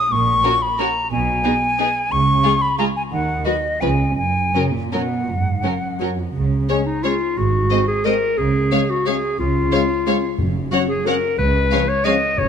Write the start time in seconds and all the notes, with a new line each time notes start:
Already playing: D#6
0.12 A#1 A#2 C#6
0.44 C#4 F#4 A#4
0.62 B5
0.80 C#4 F#4 A#4 A#5
1.11 B1 B2 G#5
1.44 B3 D#4 G#4
1.79 B3 D#4 G#4
2.12 C#2 C#3 C#6
2.43 G#3 F4 G#4
2.62 B5
2.79 G#3 F4 G#4 A#5
2.96 G#5
3.12 D#2 D#3 F#5
3.45 F#3 F#4 B4 D#5
3.81 C#2 C#3 F3 C#4 B4 G#5
4.17 F#1 F#2 G#5
4.54 C#3 F#3 C#4 A#4
4.74 A#2
4.92 B2 F#3 C#4 A#4 F#5
5.28 F#1 A#2
5.36 G#2
5.63 F#2 F#3 C#4 A#4
6.01 F#3 C#4 A#4
6.19 F2
6.36 C#2 C#3
6.69 G#3 C#4 C#5
6.86 D#4
7.03 G#3 C#4 F4 C#5
7.37 G#1 G#2 F#4
7.71 G#3 C4 C5 D#5
7.88 G#4
8.04 G#3 C4 A#4 C5 D#5
8.37 C#2 C#3 G#4
8.71 G#3 C#4 C#5 F5
8.90 F#4
9.06 G#3 C#4 G#4 C#5 F5
9.39 C#2 C#3 F4
9.71 G#3 C#4 C#5 F5
10.06 G#3 C#4 C#5 F5
10.38 F#1 F#2
10.71 F#3 C#4 F#4 C#5 F#5
10.88 G#4
11.06 F#3 C#4 A#4 C#5 F#5
11.38 C#2 C#3 B4
11.71 F3 G#3 C#4 C#5 F5
11.88 C#5
12.04 F3 G#3 C#4 C#5 D#5 F5
12.38 F#1 F#2 C#5